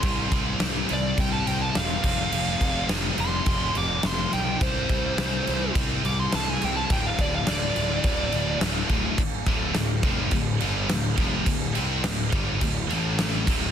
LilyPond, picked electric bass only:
\new Staff \with { instrumentName = "Picked electric bass" } { \clef bass \time 4/4 \key d \minor \tempo 4 = 105 c,8 c,8 c,8 c,8 c,8 c,8 e,,8 f,,8 | f,,8 f,,8 f,,8 f,,8 f,,8 f,,8 f,,8 b,,8 | c,8 c,8 c,8 c,8 c,8 c,8 c,8 c,8 | d,,8 d,,8 d,,8 d,,8 d,,8 d,,8 d,,8 d,,8 |
r8 d,,8 d,,8 f,,8 d,,8 g,,8 d,,8 f,,8 | d,,8 c,8 d,,8 g,,8 d,,8 a,,4 d,,8 | }